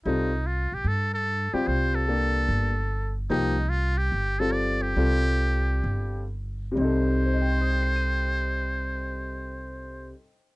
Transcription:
0.05 C2 G3 C4 D#4 F4 A4
0.47 F4
0.72 A#1 G4
0.85 G2 A4
1.14 A4
1.53 G3 C4 F4 G4, muted upright bass stroke
1.67 C2 C5
1.95 A4
2.07 A#3 D4 G4 A4
2.48 G1
3.30 C2 F3 A#3 D#4 G4
3.69 F4
3.98 G4
4.12 G1
4.39 G3 C4 F4 A4
4.52 D5
4.82 G4
4.96 C2 G3 C4 F4 A4
5.84 G1
6.72 C3 G3
6.77 C2 C4 C5
6.81 D#4 A4
7.26 C5
7.34 D#5
7.42 G5
7.51 C6
7.61 D#6
7.72 G6
7.83 C7
7.96 D#7

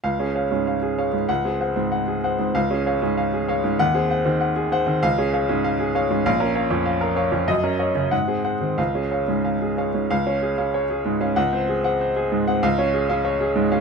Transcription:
0.04 C#2 F5
0.19 C#4 G#4
0.35 C#5 F5
0.51 G#2 C#4
0.67 F5
0.82 G#4
0.98 C#5 F5
1.13 G#2 C#4
1.29 C#2 F#5
1.45 C4 G#4
1.60 C5 F#5
1.76 G#2 C4
1.92 F#5
2.08 G#4
2.24 C5 F#5
2.39 G#2 C4
2.55 C#2 F5
2.71 C#4 G#4
2.86 C#5 F5
3.02 G#2 C#4
3.17 F5
3.33 G#4
3.48 C#5 F5
3.64 G#2 C#4
3.79 D#2 F#5
3.94 C4 G#4
4.10 C5 F#5
4.25 D#3 C4
4.41 F#5
4.56 G#4
4.72 C5 F#5
4.87 D#3 C4
5.03 C#2 F5
5.18 C#4 G#4
5.33 C#5 F5
5.49 G#2 C#4
5.64 F5
5.80 G#4
5.95 C#5 F5
6.10 G#2 C#4
6.26 A#1 F5
6.40 C#4 A#4
6.55 C#5 F5
6.70 F2 C#4
6.86 F5
7.01 A#4
7.16 C#5 F5
7.32 F2 C#4
7.48 F#2 D#5
7.63 C#4 A#4
7.79 C#5 D#5
7.95 C#3 C#4
8.11 G#2 F#5
8.28 C4 G#4
8.44 C5 F#5
8.61 D#3 C4
8.78 C#2 F5
8.95 C#4 G#4
9.12 C#5 F5
9.28 G#2 C#4
9.45 F5
9.62 G#4
9.78 C#5 F5
9.94 G#2 C#4
10.11 C#2 F5
10.27 C#4 C#5
10.42 G#4
10.58 C#4 F5
10.74 C#5
10.90 G#4
11.05 G#2
11.21 C#4 F5
11.36 C#2 F#5
11.53 C4 C5
11.69 G#4
11.84 C4 F#5
12.01 C5
12.16 G#4
12.32 G#2
12.48 C4 F#5
12.63 C#2 F5
12.78 C#4 C#5
12.94 G#4
13.09 C#4 F5
13.25 C#5
13.40 G#4
13.56 G#2
13.72 C#4 F5

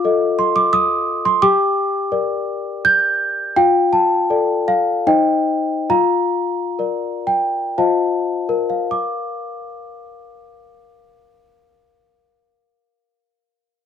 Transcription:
Already playing: F4 F5 D6
0.05 A4 D#5
0.39 C6
0.56 D6
0.73 D#6
1.25 C6
1.42 G4 G5 D6
2.12 A#4 D5
2.85 G6
3.56 F4 F5 G5
3.93 A5
4.30 A4 D5
4.68 F5
5.07 D#4 C5 D#5 G5
5.90 F4 F5 A#5
6.79 A#4 D5
7.27 G5
7.78 F4 C5 D#5 F5 A5
8.49 A#4
8.70 F5
8.91 D6

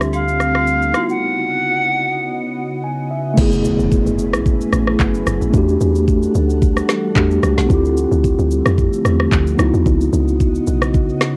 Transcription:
Already playing: D2 D3 G3 A3 C4 D4 F4 G4
0.01 cross-stick, shaker
0.13 F5, high agogo, shaker
0.28 shaker
0.40 cross-stick, shaker
0.55 cross-stick, high agogo
0.67 shaker
0.82 shaker
0.91 C#3 B3 D#4 F#4 D#5, cross-stick, high agogo, shaker
0.96 E4 F#4
1.09 F#5, shaker
2.84 G#5
3.11 E5
3.34 F#1 F#3 A3 B3 C#4 E4 G#4 B4, kick, crash, impact, shaker
3.39 E4 G#4
3.52 shaker
3.65 shaker
3.79 F#1, shaker
3.92 kick, shaker
4.06 F#1, shaker
4.19 shaker
4.33 B1, cross-stick, shaker
4.46 kick, shaker
4.61 shaker
4.73 A1, cross-stick, shaker
4.87 cross-stick
4.99 F#1, kick, clap, shaker
5.14 shaker
5.27 F#1, cross-stick, shaker
5.41 A1, shaker
5.50 E2 E3 G3 A3 D4 A4 F#5, kick, shaker
5.55 F#4 G4
5.68 shaker
5.81 E2, shaker
5.95 shaker
6.08 kick, shaker
6.23 shaker
6.35 D2, shaker
6.50 shaker
6.62 kick, shaker
6.77 cross-stick, shaker
6.89 cross-stick, snare, shaker
7.14 E2 A3 D4 F#4 G4, kick, clap, shaker
7.31 shaker
7.43 C#2, cross-stick, shaker
7.57 B1, snare, shaker
7.67 D2 D3 F3 A3 C4 E4, kick, shaker
7.71 F4 G4
7.85 shaker
7.97 shaker
8.11 D2, shaker
8.24 kick, shaker
8.39 D2, shaker
8.51 shaker
8.66 F2, cross-stick, shaker
8.78 kick, shaker
8.93 shaker
9.05 E2, cross-stick, shaker
9.20 cross-stick
9.32 D2, kick, clap, shaker
9.47 shaker
9.55 C#2 C#3 B3 D#4 F#4 D#5, cross-stick, shaker
9.60 E4 F#4
9.74 E2, shaker
9.86 C#2, kick, shaker
10.01 shaker
10.13 C#2, shaker
10.28 shaker
10.40 kick, shaker
10.55 shaker
10.67 B1, shaker
10.82 cross-stick, shaker
10.94 kick, shaker
11.09 shaker
11.21 cross-stick, snare, shaker

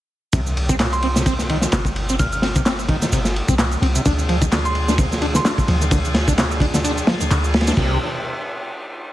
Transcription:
0.33 C2 C3, kick, ride, shaker
0.47 shaker
0.57 ride
0.69 C4, kick, shaker
0.79 A#2, snare, clap, ride, shaker
0.93 C6, ride, shaker
1.02 C4, ride
1.16 C3, snare, shaker
1.26 C4, kick, ride, shaker
1.39 snare, shaker
1.49 D#3, ride
1.61 D#3, snare, shaker
1.72 G1 C3, snare, clap, ride, shaker
1.85 kick, shaker
1.96 ride
2.09 C4, shaker
2.19 A#2 F6, kick, ride, shaker
2.32 F6, shaker
2.42 C4, snare, ride
2.56 C3, kick, shaker
2.66 C4, snare, clap, ride, shaker
2.79 ride, shaker
2.89 D#3, kick, ride
3.02 D#3, snare, shaker
3.12 G1 C3, ride, shaker
3.25 snare, shaker
3.36 ride
3.48 C2 C4, kick, shaker
3.58 A#2, snare, clap, ride, shaker
3.71 ride, shaker
3.82 C2 C4, ride
3.95 C3, shaker
4.05 D2 F3 G#3 D4 G#4, kick, ride, shaker
4.19 shaker
4.29 F3, ride
4.42 D#3, kick, shaker
4.52 D3, snare, clap, ride, shaker
4.65 C6, ride, shaker
4.75 ride
4.88 D4, snare, shaker
4.98 C3, kick, ride, shaker
5.12 snare, shaker
5.22 D4, ride
5.35 D3 C6, snare, shaker
5.45 D4 C6, snare, clap, ride, shaker
5.58 kick, shaker
5.68 D2 F3, ride
5.81 D#3, shaker
5.91 D3, kick, ride, shaker
6.05 shaker
6.14 snare, ride
6.28 D4, kick, shaker
6.38 C3, snare, clap, ride, shaker
6.51 ride, shaker
6.60 D4, kick, ride
6.74 D3, snare, shaker
6.84 D4, ride, shaker
6.98 shaker
7.07 F3, snare, ride
7.21 D2 D#3, shaker
7.31 D2 D3, clap, ride, shaker
7.44 shaker
7.54 snare, ride
7.61 snare, ride
7.67 D4, snare, ride, shaker
7.72 snare, ride
7.77 C2 C3 D#3 G3 C4 G4, kick, crash

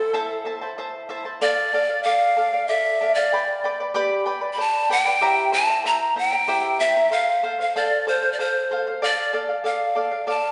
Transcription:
Already playing: A4 A5
0.00 E4 C5
0.13 E4 A4 C5 E5 A5
0.45 E4 C5 E5 A5
0.61 E4 C5 A5
0.78 E4 C5 E5 A5
1.09 E4 C5 E5 A5
1.25 E4 C5 A5
1.41 A4 D5 F5
1.73 A4 D5 F5
1.89 D5 F5
2.03 A4 D5 F5
2.37 A4 D5 F5
2.53 D5 F5
2.68 A4 D5 E5
3.01 A4 D5 F5
3.15 D5 F5
3.32 B4 D5 G5 B5
3.64 B4 D5 G5 B5
3.80 B4 D5 B5
3.94 G4 B4 D5 G5 B5
4.26 B4 D5 G5 B5
4.41 B4 D5 B5
4.53 B5
4.57 B4 D5 G5 A5 B5
4.90 B4 D5 F#5 G5 B5
5.03 D5 G5 B5
5.07 B4
5.21 E4 G4 C5 E5 A#5
5.52 E4 C5 E5 A5 A#5
5.69 E4 E5 A#5
5.84 E4 C5 E5 A#5
6.16 E4 C5 E5 G5 A#5
6.32 E4 E5 A#5
6.48 E4 G4 C5 E5 A#5
6.80 E4 C5 E5 A#5
6.96 E4 E5 A#5
7.10 A4 C5 F5
7.43 A4 C5 F5
7.59 C5 F5
7.76 A4 C5 D5 F5
8.07 A4 C5 F5
8.22 C5 F5
8.33 D5
8.39 A4 C5 F5
8.71 A4 C5 F5
8.87 C5 F5
9.02 A4 D5 F5
9.33 A4 D5 F5
9.49 D5 F5
9.64 A4 D5 F5
9.95 A4 D5 F5
10.12 D5 F5
10.27 A4 D5 F5 A5

